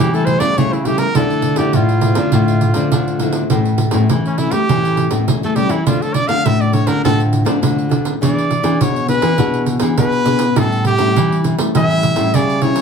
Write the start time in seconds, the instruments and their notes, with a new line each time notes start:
Already playing: nylon-string guitar C#3
0.00 nylon-string guitar E3, trumpet G4
0.13 nylon-string guitar G3 A3 E4, trumpet A4, pandeiro
0.25 trumpet C5, pandeiro
0.39 nylon-string guitar C#3, trumpet D5, pandeiro
0.57 nylon-string guitar C#3 G3 A3 E4, trumpet C#5, pandeiro
0.73 trumpet E4, pandeiro
0.85 nylon-string guitar G3 A3 E4, trumpet G4, pandeiro
0.98 trumpet A#4, pandeiro
1.15 nylon-string guitar D3 F3 A3 E4, trumpet A4, pandeiro
1.30 pandeiro
1.42 pandeiro
1.56 nylon-string guitar D3 F3 A3 E4, trumpet G4, pandeiro
1.73 nylon-string guitar A2, trumpet F4, pandeiro
1.89 pandeiro
2.01 nylon-string guitar F3 A3 E4, pandeiro
2.15 nylon-string guitar D3, pandeiro
2.32 nylon-string guitar A2 D3 F3 A3 E4, pandeiro
2.48 pandeiro
2.61 pandeiro
2.74 nylon-string guitar D3 F3 A3, pandeiro
2.92 nylon-string guitar A2 D3, pandeiro
3.08 pandeiro
3.19 nylon-string guitar F3 A3 E4, pandeiro
3.32 pandeiro
3.50 nylon-string guitar A2 E3 A3 C#4, pandeiro
3.65 pandeiro
3.78 pandeiro
3.91 nylon-string guitar A2 E3 A3 C#4, pandeiro
4.09 nylon-string guitar E3, pandeiro
4.26 trumpet C#4, pandeiro
4.38 nylon-string guitar E3 A3 C#4, trumpet E4, pandeiro
4.51 nylon-string guitar A3, trumpet G4, pandeiro
4.69 nylon-string guitar A2 E3 A3 C#4, pandeiro
4.85 pandeiro
4.97 pandeiro
5.11 nylon-string guitar A2 E3 A3 C#4, pandeiro
5.28 nylon-string guitar E3 C#4, pandeiro
5.43 nylon-string guitar A3, trumpet A4, pandeiro
5.56 nylon-string guitar E3 G3 A3 C#4, trumpet G4, pandeiro
5.69 nylon-string guitar E3, trumpet E4, pandeiro
5.86 nylon-string guitar D3 F3 A3 D4, trumpet F4, pandeiro
6.02 trumpet A4, pandeiro
6.14 trumpet D5, pandeiro
6.28 nylon-string guitar D3 F3 A3 D4, trumpet F5, pandeiro
6.45 nylon-string guitar A2, trumpet E5, pandeiro
6.61 trumpet D5, pandeiro
6.73 nylon-string guitar F3 A3 D4, trumpet C#5, pandeiro
6.87 nylon-string guitar D3, trumpet A#4, pandeiro
7.04 nylon-string guitar A2 D3 F3 A3 D4, trumpet A4, pandeiro
7.20 pandeiro
7.33 pandeiro
7.45 nylon-string guitar D3 F3 A3 D4, pandeiro
7.61 nylon-string guitar A2 D3, pandeiro
7.79 pandeiro
7.89 nylon-string guitar F3 A3 D4, pandeiro
8.05 pandeiro
8.21 nylon-string guitar E3 B3 D4 G#4, trumpet D5, pandeiro
8.38 pandeiro
8.51 pandeiro
8.63 nylon-string guitar E3 B3 D4 G#4, pandeiro
8.80 nylon-string guitar B2, trumpet C#5, pandeiro
8.96 pandeiro
9.08 nylon-string guitar B3 D4 G#4, trumpet B4, pandeiro
9.22 nylon-string guitar E3, pandeiro
9.38 nylon-string guitar B2 E3 B3 D4 G#4, pandeiro
9.54 pandeiro
9.66 pandeiro
9.80 nylon-string guitar E3 B3 D4 G#4, pandeiro
9.98 nylon-string guitar B2, trumpet B4, pandeiro
10.12 pandeiro
10.26 nylon-string guitar B3 D4 G#4, pandeiro
10.39 pandeiro
10.56 nylon-string guitar A2 G3 C#4 E4, trumpet A4, pandeiro
10.72 pandeiro
10.85 trumpet G4, pandeiro
10.98 nylon-string guitar A2 G3 C#4 E4, pandeiro
11.16 nylon-string guitar E3, pandeiro
11.32 pandeiro
11.44 nylon-string guitar G3 C#4 E4, pandeiro
11.59 nylon-string guitar A3, pandeiro
11.74 nylon-string guitar A2 E3 G3 C#4 E4, trumpet E5, pandeiro
11.91 pandeiro
12.03 pandeiro
12.16 nylon-string guitar A2 G3 C#4 E4, pandeiro
12.34 nylon-string guitar C#3 E3, trumpet D5, pandeiro
12.50 pandeiro
12.62 nylon-string guitar G3 C#4 E4, trumpet C#5, pandeiro
12.76 pandeiro